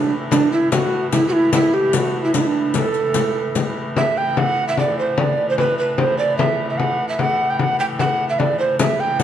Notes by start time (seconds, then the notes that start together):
Already playing: A2 E3 D4
0.11 frame drum
0.31 D4, riq, frame drum
0.52 E4
0.72 F#4, riq, frame drum
1.12 E4, riq, frame drum
1.28 F#4
1.33 E4, frame drum
1.53 E4, riq, frame drum
1.74 G4
1.93 F#4, riq, frame drum
2.24 E4
2.34 D4, riq, frame drum
2.41 E4
2.46 D4
2.55 frame drum
2.74 A4, riq, frame drum
2.94 riq
3.14 riq, frame drum
3.55 riq, frame drum
3.96 A2 E3 E5, frame drum
4.17 G5
4.37 F#5, frame drum
4.68 E5
4.77 D5, frame drum
4.98 C5, frame drum
5.18 D5, frame drum
5.50 C5
5.58 B4, frame drum
5.79 B4
5.98 C5, frame drum
6.18 D5, frame drum
6.38 E5, frame drum
6.69 E5
6.77 F#5, frame drum
7.09 E5
7.19 F#5, frame drum
7.39 frame drum
7.50 G5
7.59 F#5, frame drum
7.80 G5
7.99 F#5, frame drum
8.29 E5
8.39 D5, frame drum
8.59 C5, frame drum
8.79 A2 E3 E5, riq, frame drum
9.00 G5
9.19 F#5, riq, frame drum